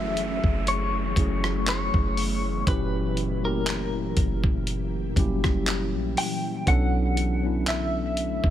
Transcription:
Already playing: 808-style bass F#1, ambient pad E3 A3 C#4 E4 G#4, tine electric piano F#3 A3 C#4 E4 F#4 G#4, clean electric guitar E5, downlifter
0.17 closed hi-hat
0.44 808-style bass F#1, kick
0.67 ambient pad B3, clean electric guitar C#5, closed hi-hat
1.16 808-style bass F#1, tine electric piano F#3 A3 C#4 E4 G#4, kick, closed hi-hat
1.44 cross-stick
1.67 clean electric guitar C#5, clap, closed hi-hat
1.94 808-style bass F#1, kick
2.17 open hi-hat
2.66 808-style bass F#1, tine electric piano A#2 F#3 C#4 E4 G4, ambient pad A#2 G4, clean electric guitar B4, kick, closed hi-hat
3.17 closed hi-hat
3.43 tine electric piano F#3 A3 C#4 E4 G4, clean electric guitar A#4
3.50 tine electric piano A#3
3.67 clap, closed hi-hat
4.17 808-style bass F#1, kick, closed hi-hat
4.44 kick
4.67 closed hi-hat
5.16 808-style bass F#1, tine electric piano F#3 G3 C#4 E4 G4, kick, closed hi-hat
5.24 tine electric piano A#3
5.44 kick, cross-stick
5.67 clap, closed hi-hat
5.94 808-style bass A#1
6.17 clean electric guitar G5, open hi-hat
6.66 808-style bass B1, ambient pad D3 A3 B3, tine electric piano F#3 B3 C#4 D4 A4, clean electric guitar F#5, kick, closed hi-hat
7.17 closed hi-hat
7.43 tine electric piano F#3 B3 C#4 D4 E4
7.67 clean electric guitar E5, clap, closed hi-hat
8.17 closed hi-hat
8.44 808-style bass B1, kick

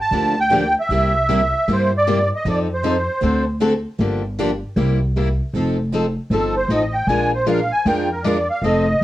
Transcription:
0.01 accordion A5
0.11 upright bass D2, steel-string acoustic guitar D3 F3 A#3 D4 G4
0.40 accordion G5
0.52 steel-string acoustic guitar D3 F3 A#3 D4 G4
0.80 accordion E5
0.89 upright bass C2, steel-string acoustic guitar C3 G3 A#3 E4 G4
1.29 steel-string acoustic guitar C3 G3 A#3 E4 G4
1.68 upright bass G2, steel-string acoustic guitar C3 G3 A#3 E4 G4
1.73 accordion C5
1.97 accordion D5
2.07 steel-string acoustic guitar C3 G3 A#3 E4 G4
2.36 accordion D#5
2.45 upright bass F2, steel-string acoustic guitar F3 C4 D#4 A4
2.49 accordion D5
2.74 accordion C5
2.84 steel-string acoustic guitar F3 C4 D#4 A4
3.22 upright bass D2, steel-string acoustic guitar D3 A3 C4 F#4 A4
3.60 steel-string acoustic guitar D3 A3 C4 F#4 A4
3.99 upright bass G1, steel-string acoustic guitar D3 F3 A#3 D4 G4
4.39 steel-string acoustic guitar D3 F3 A#3 D4 G4
4.76 upright bass C2, steel-string acoustic guitar C3 G3 A#3 E4 G4
5.16 steel-string acoustic guitar C3 G3 A#3 E4 G4
5.53 upright bass F1, steel-string acoustic guitar F3 C4 D#4 A4
5.94 steel-string acoustic guitar F3 C4 D#4 A4
6.30 upright bass G1, steel-string acoustic guitar F3 C4 D#4 A4, accordion A4
6.57 accordion C5
6.68 upright bass A1, steel-string acoustic guitar F3 C4 D#4 A4, accordion D#5
6.93 accordion G5
7.07 upright bass A#1, steel-string acoustic guitar F3 G#3 D4 F4 A#4, accordion G#5
7.35 accordion C5
7.46 steel-string acoustic guitar F3 G#3 D4 F4 A#4, accordion F5
7.72 accordion G#5
7.85 upright bass F2, steel-string acoustic guitar F3 G#3 D4 F4 A#4, accordion G5
8.12 accordion A#4
8.24 steel-string acoustic guitar F3 G#3 D4 F4 A#4, accordion D5
8.50 accordion F5
8.62 upright bass F1, steel-string acoustic guitar F3 C4 D#4 A4, accordion D#5

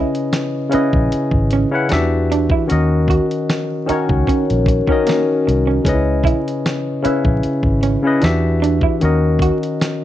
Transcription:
Already playing: tine electric piano C#3 C#4 E4 B4 D#5
0.15 closed hi-hat
0.33 snare, closed hi-hat
0.70 tine electric piano C#3 C#4 E4 B4, clean electric guitar C#4, closed hi-hat
0.74 tine electric piano D#5, muted fingered electric bass stroke
0.93 fingered electric bass A#1, kick
1.12 closed hi-hat
1.31 fingered electric bass G#1, kick
1.50 clean electric guitar C#4, closed hi-hat
1.71 tine electric piano C#3 C#4 E4 B4 F#5
1.89 fingered electric bass E2, tine electric piano E3 D4 F#4 G4, muted clean electric guitar stroke, snare, closed hi-hat
1.93 tine electric piano E5
2.32 clean electric guitar D4, closed hi-hat
2.50 clean electric guitar E4, kick
2.67 tine electric piano D#3 C#4 F#4 A#4, closed hi-hat
2.71 fingered electric bass D#2, tine electric piano D#5
3.08 clean electric guitar F#4, kick, closed hi-hat
3.31 closed hi-hat
3.50 snare, closed hi-hat
3.86 tine electric piano D#3 C#4 F#4 A#4, clean electric guitar D#4, muted fingered electric bass stroke, closed hi-hat
3.92 tine electric piano C#5
4.09 fingered electric bass C#2, kick
4.27 clean electric guitar C#4, kick, closed hi-hat
4.50 fingered electric bass A#1, closed hi-hat
4.66 muted clean electric guitar stroke, kick, closed hi-hat
4.87 tine electric piano D#3 C#4 F#4 A#4, clean electric guitar C#4, kick
4.92 tine electric piano D#5
5.07 clean electric guitar A#3, snare, closed hi-hat
5.47 fingered electric bass C2, muted clean electric guitar stroke, closed hi-hat
5.67 clean electric guitar C#4
5.84 fingered electric bass C#2, tine electric piano C#3 C#4 D#4 B4, kick, closed hi-hat
5.89 tine electric piano D#5
5.93 tine electric piano E4
6.24 clean electric guitar E4, kick, closed hi-hat
6.48 closed hi-hat
6.66 snare, closed hi-hat
7.02 tine electric piano C#3 C#4 E4 B4, clean electric guitar C#4, muted fingered electric bass stroke, closed hi-hat
7.07 tine electric piano E5
7.25 fingered electric bass A#1, kick
7.43 muted fingered electric bass stroke, closed hi-hat
7.63 fingered electric bass G#1, kick
7.83 clean electric guitar C#4, closed hi-hat
8.03 tine electric piano C#3 C#4 E4 B4
8.07 tine electric piano D#5
8.20 fingered electric bass E2, tine electric piano E3 D4 F#4 G4, muted clean electric guitar stroke, snare, closed hi-hat
8.24 tine electric piano E5
8.62 clean electric guitar D4, closed hi-hat
8.81 clean electric guitar E4, kick
9.00 fingered electric bass D#2, tine electric piano D#3 C#4 F#4 A#4, closed hi-hat
9.05 tine electric piano D#5
9.39 clean electric guitar F#4, kick, closed hi-hat
9.63 closed hi-hat
9.81 snare, closed hi-hat

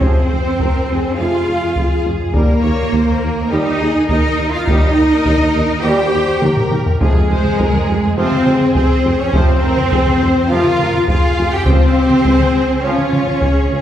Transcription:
0.00 tuba F1, double bass section F2, trombone section C3 F3, cello section C4, french horn section C4, viola section C4, violin section G#4 C5, taiko
0.16 double bass section F2
0.31 tuba F1, double bass section F2, violin section C5
0.45 double bass section F2
0.59 tuba F1, double bass section F2, violin section A#4, taiko
0.74 double bass section F2
0.89 tuba F1, double bass section F2, violin section G#4
1.04 double bass section F2
1.18 tuba F1, double bass section F2, trombone section C3 F3, french horn section F4, cello section F4, viola section F4, violin section F5
1.47 tuba F1, double bass section F2
1.62 double bass section F2
1.76 tuba F1, double bass section F2, violin section G#4, taiko
2.05 tuba F1, double bass section F2
2.20 double bass section F2
2.33 tuba D#2, double bass section D#2, trombone section A#2 G3, viola section A#3, cello section A#3, french horn section A#3, violin section A#4, taiko
2.51 double bass section D#2
2.63 tuba D#2, double bass section D#2, violin section C#5
2.80 double bass section D#2
2.92 tuba D#2, double bass section D#2, violin section C5, taiko
3.09 double bass section D#2
3.23 tuba D#2, double bass section D#2, violin section A#4
3.38 double bass section D#2
3.50 double bass section D#2, tuba D#2, trombone section A#2 G3, cello section D#4, viola section D#4, french horn section D#4, violin section G4 D#5
3.80 double bass section D#2, tuba D#2, violin section G#4
3.95 double bass section D#2
4.09 tuba D#2, double bass section D#2, cello section D#4, viola section D#4, french horn section D#4, violin section A#4 D#5, taiko
4.38 double bass section D#2, tuba D#2
4.53 double bass section D#2, viola section F4, cello section F4, french horn section F4, violin section F5
4.67 double bass section D#2, tuba D#2, trombone section A#2 G3, cello section D#4, viola section D#4, french horn section D#4, violin section G4 D#5, taiko
4.83 double bass section D#2
4.97 double bass section D#2, tuba D#2, violin section A#4
5.12 double bass section D#2
5.26 tuba D#2, double bass section D#2, taiko
5.42 double bass section D#2
5.55 tuba D#2, double bass section D#2
5.70 double bass section D#2
5.83 tuba D#2, double bass section D#2, trombone section A#2 G3, viola section G4, cello section G4, french horn section G4, violin section C5 G5
6.13 tuba D#2, double bass section D#2
6.28 double bass section D#2
6.42 tuba D#2, double bass section D#2, violin section A#4, taiko mid
6.57 taiko low-mid
6.72 double bass section D#2, tuba D#2, taiko mid
6.86 double bass section D#2, taiko low
7.00 tuba F1, double bass section F2, trombone section C3 F3, cello section G#3, viola section G#3, french horn section G#3, violin section G#4, taiko
7.15 double bass section F2
7.29 tuba F1, double bass section F2, violin section C5
7.44 double bass section F2, taiko mid
7.59 tuba F1, double bass section F2, violin section A#4, taiko
7.74 double bass section F2, taiko mid
7.88 tuba F1, double bass section F2, violin section G#4
8.04 double bass section F2
8.16 tuba F1, double bass section F2, trombone section C3 F3, viola section C4, cello section C4, french horn section C4, violin section F4 C5
8.32 taiko mid
8.46 tuba F1, double bass section F2, violin section G#4, taiko mid
8.61 double bass section F2, taiko mid
8.75 tuba F1, double bass section F2, viola section C4, cello section C4, french horn section C4, violin section C5, taiko
9.04 tuba F1, double bass section F2
9.19 double bass section F2, cello section C#4, viola section C#4, french horn section C#4, violin section C#5
9.32 tuba F1, double bass section F2, trombone section C3 F3, cello section C4, viola section C4, french horn section C4, violin section C5, taiko
9.49 double bass section F2
9.62 tuba F1, double bass section F2, violin section A#4
9.77 double bass section F2, taiko mid
9.91 tuba F1, double bass section F2, violin section G#4, taiko
10.06 double bass section F2, taiko mid
10.20 tuba F1, double bass section F2, violin section C5
10.35 double bass section F2
10.48 tuba F1, double bass section F2, trombone section C3 F3, french horn section F4, cello section F4, viola section F4, violin section A#4 F5
10.64 taiko mid
10.78 tuba F1, double bass section F2, taiko mid
10.93 double bass section F2, taiko mid
11.08 tuba F1, double bass section F2, viola section F4, cello section F4, french horn section F4, violin section G#4 F5, taiko
11.37 tuba F1, double bass section F2
11.52 double bass section F2, cello section G4, viola section G4, french horn section G4, violin section G5
11.65 double bass section C#2, tuba C#2, trombone section C#3 F3, cello section C4, viola section C4, french horn section C4, violin section F4 C5, taiko
11.80 double bass section C#2
11.95 double bass section C#2, tuba C#2, violin section G4
12.10 double bass section C#2, taiko mid
12.24 double bass section C#2, tuba C#2, violin section G#4, taiko
12.39 double bass section C#2, taiko mid
12.54 double bass section C#2, tuba C#2
12.68 double bass section C#2
12.83 double bass section C#2, tuba C#2, trombone section C#3 F3, cello section C#4, viola section C#4, french horn section C#4, violin section F4 C#5
12.98 taiko mid
13.11 double bass section C#2, tuba C#2, taiko mid
13.26 double bass section C#2, taiko mid
13.41 double bass section C#2, tuba C#2, violin section G#4, taiko
13.70 double bass section C#2, tuba C#2, violin section G#4

